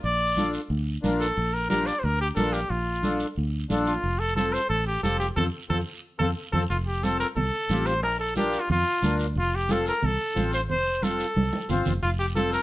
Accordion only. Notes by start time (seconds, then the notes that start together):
0.37 D4 F4 A4
1.03 D4 F4 A#4
1.70 D4 F4 G4
2.36 D4 F4 A#4
3.03 D4 F4 A4
3.70 D4 F4 A4
4.36 C4 F4 A4
5.03 C4 F4 G4
5.36 C4 F4 A4
5.70 C4 F4 A4
6.20 C4 F4 A4
6.53 C4 F4 A4
7.03 C4 F4 A4
7.70 C4 F4 G4
8.36 D4 F4 A#4
9.02 D4 F4 A#4
9.69 C4 F4 A4
10.35 C4 F4 C5
11.02 C4 F4 A4
11.69 C4 F4 C5
12.36 C4 F4 A4